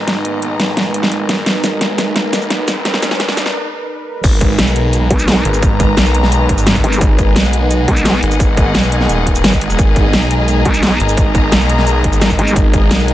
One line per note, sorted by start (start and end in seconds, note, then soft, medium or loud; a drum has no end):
0.00 0.41 G#1 medium
0.00 4.20 G#3 medium
0.00 3.54 B3 medium
0.00 4.20 D#4 medium
0.00 3.54 G#4 medium
0.00 4.20 A#4 medium
0.00 4.20 B4 medium
0.00 3.54 D#5 medium
0.00 3.54 A#5 medium
0.00 riser medium
0.08 snare medium
0.08 closed hi-hat medium
0.25 closed hi-hat loud
0.42 0.93 B1 medium
0.42 closed hi-hat medium
0.60 snare medium
0.60 closed hi-hat loud
0.77 snare medium
0.77 closed hi-hat medium
0.94 1.28 G#1 loud
0.94 closed hi-hat loud
1.03 snare medium
1.12 closed hi-hat medium
1.29 1.45 G#1 loud
1.29 snare medium
1.29 closed hi-hat loud
1.46 1.80 G#1 medium
1.46 snare medium
1.46 closed hi-hat medium
1.64 snare medium
1.64 closed hi-hat medium
1.64 shaker medium
1.81 2.32 B1 loud
1.81 snare medium
1.81 closed hi-hat medium
1.98 snare medium
1.98 closed hi-hat loud
1.98 shaker medium
2.16 snare medium
2.16 closed hi-hat medium
2.33 2.66 B1 loud
2.33 snare medium
2.33 closed hi-hat loud
2.33 shaker medium
2.42 shaker soft
2.50 snare medium
2.50 closed hi-hat medium
2.68 3.18 G#1 medium
2.68 snare medium
2.68 closed hi-hat loud
2.68 shaker medium
2.85 snare medium
2.85 closed hi-hat medium
2.94 snare medium
3.02 snare medium
3.02 closed hi-hat medium
3.02 shaker medium
3.11 snare medium
3.20 3.36 F#1 medium
3.20 snare loud
3.20 closed hi-hat medium
3.28 snare medium
3.37 3.54 G#1 loud
3.37 snare loud
3.37 closed hi-hat medium
3.37 shaker medium
3.46 snare medium
4.24 4.57 G#1 medium
4.24 13.14 G#3 medium
4.24 13.14 B3 medium
4.24 13.14 D#4 medium
4.24 13.14 A#4 medium
4.24 9.76 B4 medium
4.24 kick loud
4.24 closed hi-hat medium
4.24 crash loud
4.24 shaker medium
4.41 13.14 G#4 medium
4.41 kick loud
4.41 closed hi-hat loud
4.41 shaker soft
4.56 5.09 B1 loud
4.56 13.14 D#5 medium
4.56 snare loud
4.56 closed hi-hat medium
4.56 shaker medium
4.63 7.42 A#5 medium
4.67 shaker soft
4.76 closed hi-hat medium
4.93 closed hi-hat medium
4.93 shaker soft
5.10 5.44 B1 loud
5.10 kick medium
5.10 closed hi-hat loud
5.19 shaker medium
5.28 snare loud
5.28 closed hi-hat medium
5.28 shaker medium
5.45 5.96 G#1 loud
5.45 closed hi-hat loud
5.54 shaker medium
5.62 kick loud
5.62 closed hi-hat medium
5.62 shaker medium
5.80 kick loud
5.80 closed hi-hat medium
5.80 shaker soft
5.97 6.48 B1 loud
5.97 snare loud
5.97 closed hi-hat medium
5.97 shaker medium
6.06 shaker soft
6.15 closed hi-hat loud
6.23 snare soft
6.32 closed hi-hat medium
6.32 shaker soft
6.49 6.83 G#1 loud
6.49 kick medium
6.49 closed hi-hat loud
6.58 shaker medium
6.67 snare loud
6.67 closed hi-hat medium
6.67 shaker soft
6.75 kick medium
6.75 shaker soft
6.84 7.00 G#1 loud
6.84 closed hi-hat loud
6.93 shaker medium
7.01 7.35 G#1 medium
7.01 kick loud
7.01 closed hi-hat medium
7.01 shaker medium
7.19 kick loud
7.19 closed hi-hat medium
7.19 shaker soft
7.36 7.87 B1 medium
7.36 10.19 F#5 medium
7.36 snare loud
7.36 closed hi-hat medium
7.36 shaker soft
7.45 shaker soft
7.53 closed hi-hat loud
7.71 closed hi-hat medium
7.71 shaker soft
7.88 8.21 B1 loud
7.88 kick medium
7.88 closed hi-hat loud
7.97 shaker medium
8.05 snare loud
8.05 closed hi-hat medium
8.05 shaker soft
8.23 8.73 G#1 loud
8.23 closed hi-hat loud
8.31 shaker medium
8.40 kick loud
8.40 closed hi-hat medium
8.40 shaker soft
8.57 kick loud
8.57 closed hi-hat medium
8.57 shaker soft
8.75 9.08 B1 loud
8.75 snare loud
8.75 closed hi-hat medium
8.75 shaker soft
8.83 shaker soft
8.92 closed hi-hat medium
9.01 snare soft
9.09 9.43 D#1 loud
9.09 closed hi-hat medium
9.09 shaker soft
9.27 kick medium
9.27 closed hi-hat medium
9.35 shaker medium
9.44 9.77 G#1 loud
9.44 snare loud
9.44 closed hi-hat medium
9.44 shaker soft
9.53 kick medium
9.53 shaker soft
9.61 closed hi-hat loud
9.70 shaker medium
9.79 10.12 G#1 loud
9.79 13.14 D#5 medium
9.79 kick loud
9.79 closed hi-hat medium
9.79 shaker soft
9.96 kick loud
9.96 closed hi-hat medium
9.96 shaker soft
10.13 10.64 B1 medium
10.13 snare loud
10.13 closed hi-hat medium
10.13 shaker soft
10.17 12.97 A#5 medium
10.22 shaker soft
10.31 closed hi-hat medium
10.48 closed hi-hat medium
10.48 shaker soft
10.65 10.99 B1 loud
10.65 kick medium
10.65 closed hi-hat medium
10.74 shaker medium
10.83 snare loud
10.83 closed hi-hat medium
10.83 shaker soft
11.00 11.51 G#1 loud
11.00 closed hi-hat medium
11.09 shaker medium
11.17 kick loud
11.17 closed hi-hat medium
11.17 shaker medium
11.35 kick loud
11.35 closed hi-hat medium
11.35 shaker soft
11.52 12.03 B1 medium
11.52 snare loud
11.52 closed hi-hat medium
11.52 shaker medium
11.61 shaker soft
11.69 closed hi-hat medium
11.78 snare soft
11.87 closed hi-hat medium
11.87 shaker soft
12.04 12.37 G#1 loud
12.04 kick medium
12.04 closed hi-hat medium
12.13 shaker medium
12.22 snare loud
12.22 closed hi-hat medium
12.22 shaker soft
12.30 kick medium
12.30 shaker soft
12.39 12.55 G#1 loud
12.39 closed hi-hat medium
12.48 shaker medium
12.56 12.89 G#1 loud
12.56 kick loud
12.56 closed hi-hat medium
12.56 shaker medium
12.73 kick loud
12.73 closed hi-hat medium
12.73 shaker soft
12.91 13.14 B1 loud
12.91 13.14 F#5 medium
12.91 snare loud
12.91 closed hi-hat medium
12.91 shaker medium
13.00 shaker soft
13.08 closed hi-hat medium